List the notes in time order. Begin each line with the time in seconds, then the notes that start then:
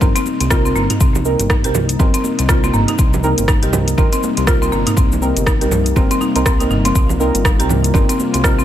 Already playing: C3 G3 A#3 D#4
0.01 G1 C4 D#4 A#4, kick, low conga, cabasa
0.16 C4, closed hi-hat, muted conga, cabasa
0.26 high conga, cabasa
0.40 C2 C4, closed hi-hat, high conga, cabasa
0.50 C4 D#4 F4 A#4, kick, cross-stick, muted conga, cabasa
0.65 C4, cabasa
0.76 G1 A#3, cabasa
0.90 D#4, closed hi-hat, mid tom, muted conga, high conga, cabasa
1.00 C2 C4, kick, cabasa
1.15 low conga, cabasa
1.25 C4 D#4 A#4, cabasa
1.39 G1, closed hi-hat, muted conga, cabasa
1.50 D#4, kick, cross-stick, cabasa
1.64 C2 C4 D#4 G4 A#4, closed hi-hat, cabasa
1.74 mid tom, low conga, cabasa
1.89 closed hi-hat, cabasa
1.99 G1 C4 D#4 A#4, kick, low conga, cabasa
2.14 C4, closed hi-hat, muted conga, cabasa
2.24 high conga, cabasa
2.39 C2 C4, closed hi-hat, cabasa
2.49 C4 D#4 F4 A#4, kick, cross-stick, muted conga, cabasa
2.64 C4, high conga, cabasa
2.73 G1 A#3, mid tom, cabasa
2.88 D#4, closed hi-hat, muted conga, high conga, cabasa
2.99 C2 C4, kick, cabasa
3.13 low conga, cabasa
3.23 C4 D#4 A#4, cabasa
3.38 G1, closed hi-hat, muted conga, cabasa
3.48 D#4, kick, cross-stick, cabasa
3.63 C2 C4 D#4 G4 A#4, closed hi-hat, cabasa
3.73 mid tom, muted conga, low conga, cabasa
3.88 closed hi-hat, cabasa
3.98 G1 C4 D#4 A#4, kick, low conga, cabasa
4.12 C4, closed hi-hat, muted conga, cabasa
4.23 high conga, cabasa
4.37 C2 C4, closed hi-hat, high conga, cabasa
4.47 C4 D#4 F4 A#4, kick, cross-stick, muted conga, cabasa
4.62 C4, cabasa
4.72 G1 A#3, cabasa
4.86 D#4, closed hi-hat, mid tom, muted conga, high conga, cabasa
4.97 C2 C4, kick, cabasa
5.12 low conga, cabasa
5.22 C4 D#4 A#4, cabasa
5.36 G1, closed hi-hat, muted conga, cabasa
5.46 D#4, kick, cross-stick, high conga, cabasa
5.61 C2 C4 D#4 G4 A#4, closed hi-hat, cabasa
5.71 mid tom, low conga, cabasa
5.86 closed hi-hat, cabasa
5.96 G1 C4 D#4 A#4, kick, low conga, cabasa
6.11 C4, closed hi-hat, muted conga, cabasa
6.21 D#4, high conga, cabasa
6.36 C2 C4 D#4 A#4, closed hi-hat, cabasa
6.46 C4, kick, cross-stick, cabasa
6.60 C4 D#4 A#4, closed hi-hat, high conga, cabasa
6.70 G1 D#4, mid tom, cabasa
6.85 C4, closed hi-hat, muted conga, high conga, cabasa
6.95 C2 C4 F4, kick, cabasa
7.09 low conga, cabasa
7.20 C4 D#4 A#4, cabasa
7.35 G1, closed hi-hat, muted conga, cabasa
7.45 D#4, kick, cross-stick, cabasa
7.59 C2 C4 D#4 G4 A#4, closed hi-hat, cabasa
7.69 mid tom, muted conga, low conga, cabasa
7.84 closed hi-hat, cabasa
7.94 G1 C4 D#4 A#4, kick, low conga, cabasa
8.09 C4, closed hi-hat, muted conga, cabasa
8.20 high conga, cabasa
8.34 C2 C4, closed hi-hat, high conga, cabasa
8.44 C4 D#4 F4 A#4, kick, cross-stick, cabasa
8.59 C4, cabasa